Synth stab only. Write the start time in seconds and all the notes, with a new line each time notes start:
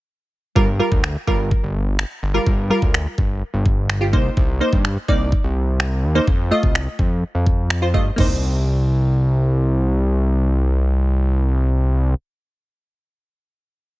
0.55 G3 F4 A#4
0.79 G3 F4 A#4
1.27 G3 F4 A#4
2.34 G3 F4 A#4
2.70 G3 F4 A#4
4.01 F4 G4
4.13 A#3 D#4 C5
4.60 A#3 D#4 C5
5.08 A#3 D#4 D5
6.15 A#3 D#4 C5
6.51 A3 F4 D#5
7.82 F4 C5
7.94 A3 F4 D#5
8.16 A#3 D#4 C5